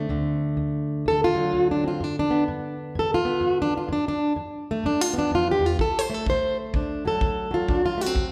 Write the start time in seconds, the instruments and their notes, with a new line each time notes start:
Already playing: steel-string acoustic guitar A3 C4
0.09 steel-string acoustic guitar D2 D3
0.57 steel-string acoustic guitar D2
1.06 steel-string acoustic guitar D2 A4
1.24 steel-string acoustic guitar F4
1.35 steel-string acoustic guitar F#3
1.53 steel-string acoustic guitar D2
1.71 steel-string acoustic guitar D4
1.84 steel-string acoustic guitar C4 F4
2.01 steel-string acoustic guitar G2 D4
2.19 steel-string acoustic guitar D4
2.30 steel-string acoustic guitar B3
2.48 steel-string acoustic guitar G2
2.95 steel-string acoustic guitar G2 A4
3.14 steel-string acoustic guitar F4
3.25 steel-string acoustic guitar B3
3.41 steel-string acoustic guitar G2
3.62 steel-string acoustic guitar D4
3.77 steel-string acoustic guitar F4
3.89 steel-string acoustic guitar G2 D4
4.08 steel-string acoustic guitar D4
4.36 steel-string acoustic guitar G2
4.71 steel-string acoustic guitar A3
4.84 steel-string acoustic guitar G2 D4
5.01 steel-string acoustic guitar F4
5.13 steel-string acoustic guitar B3
5.18 steel-string acoustic guitar D4
5.31 steel-string acoustic guitar F2
5.35 steel-string acoustic guitar F4
5.51 steel-string acoustic guitar G4
5.60 steel-string acoustic guitar E2
5.66 steel-string acoustic guitar F4
5.79 steel-string acoustic guitar D2 A4, kick
5.99 steel-string acoustic guitar C5
6.10 steel-string acoustic guitar A3
6.14 steel-string acoustic guitar A4
6.26 steel-string acoustic guitar D2 C5, kick
6.74 steel-string acoustic guitar D2 D4, kick
7.05 steel-string acoustic guitar F#3 A4
7.21 steel-string acoustic guitar D2, kick
7.51 steel-string acoustic guitar F#3 F4
7.68 steel-string acoustic guitar D2 D4, kick
7.86 steel-string acoustic guitar F4
7.98 steel-string acoustic guitar A3 F#4
8.06 steel-string acoustic guitar C4
8.15 steel-string acoustic guitar D2, kick